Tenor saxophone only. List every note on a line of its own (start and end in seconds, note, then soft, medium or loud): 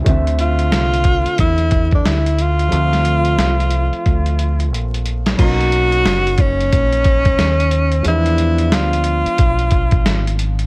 0.41 1.36 F4 loud
1.40 1.90 E4 loud
1.95 2.09 D4 medium
2.07 2.43 E4 medium
2.41 4.73 F4 loud
5.40 6.42 F#4 loud
6.41 8.06 C#4 loud
8.08 8.75 E4 loud
8.73 10.39 F4 medium